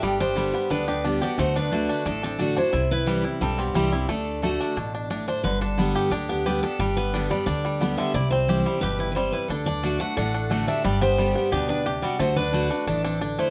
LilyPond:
<<
  \new Staff \with { instrumentName = "Steel-string acoustic guitar" } { \time 4/4 \key g \major \tempo 4 = 178 d''8 c''4. b'8 b'8 r8 d''8 | c''8 b'4. a'8 a'8 r8 c''8~ | c''8 b'4 r8 a'8 g'8 g'4 | a'2. r8 c''8 |
b'8 a'4. g'8 g'8 b'8 a'8 | g'8 b'4 d''8 d''4. e''8 | d''8 c''4. b'8 b'16. b'32 c''8 b'8 | a'8 d''4 fis''8 fis''4. e''8 |
d''8 c''4. b'8 b'8 r8 d''8 | c''8 b'4. a'8 a'8 r8 c''8 | }
  \new Staff \with { instrumentName = "Five-string banjo" } { \time 4/4 \key g \major g8 d'8 g8 b8 d'8 g'8 d'8 g'8 | a8 d'8 a8 d'8 d'8 d'8 d'8 d'8 | e'4 g8 e'8 g8 c'8 g8 e'8 | a4 a8 d'8 d'8 d'8 d'8 d'8 |
d8 d'8 b8 g'8 d'8 b8 g'8 d'8 | g8 b8 d'8 g8 d'8 g8 b8 d8 | e'8 c'8 g'8 g8 g'8 e'8 g8 e'8 | d'8 d'8 d'8 a8 d'8 d'8 a8 d'8 |
g8 b8 g8 b8 g'8 d'8 g'8 g8 | a8 d'8 a8 d'8 d'8 d'8 d'8 a8 | }
  \new Staff \with { instrumentName = "Resonator guitar played with a steel bar" } { \time 4/4 \key g \major g'8 g'4. d'8 d'8 r8 fis'8 | fis'8 d'4. d'8 c'8 r8 e'8~ | e'8 e'4 r8 c'8 b8 c'4 | d'2. r4 |
r1 | r1 | r1 | r2 a'4. g'8 |
g'8 g'4. d'8 d'8 r8 fis'8 | fis'8 d'4. d'8 c'8 r8 e'8 | }
  \new Staff \with { instrumentName = "Steel-string acoustic guitar" } { \time 4/4 \key g \major << { r4 <d g b g'>8 <b g'>8 r4 <d g b g'>8 <b g'>8 | r4 <d a d' fis'>4 r4 <d a d' fis'>8 <d' fis'>8 | r4 <e g c' e'>8 <c' e'>8 r4 <e g c' e'>8 <c' e'>8 | r4 <d a d' fis'>4 r2 |
r4 <d g b g'>4 r4 <d g b g'>8 <b g'>8 | r4 <d g b g'>8 <b g'>8 r4 <d g b g'>4 | r4 <e g c' e'>8 <c' e'>8 r2 | r4 <d a d' fis'>8 <d' fis'>8 r4 <d a d' fis'>4 |
r4 <d g b g'>8 <b g'>8 r2 | r4 <d a d' fis'>8 <d' fis'>8 r2 | } \\ { g,2 d2 | d2 a,2 | c2 g,2 | d2 b,4 a,4 |
g,2 d2 | g,2 d2 | c2 b,4 c4 | d2 a,2 |
g,2 b,4 c4 | d2 e4 d4 | } >> }
  \new Staff \with { instrumentName = "Upright bass" } { \clef bass \time 4/4 \key g \major g,,2 d,2 | d,2 a,,2 | c,2 b,,4 c,4 | d,2 a,,2 |
g,,2 d,2 | g,,2 d,2 | c,2 g,,2 | d,2 a,,2 |
g,,2 d,2 | d,2 a,,2 | }
>>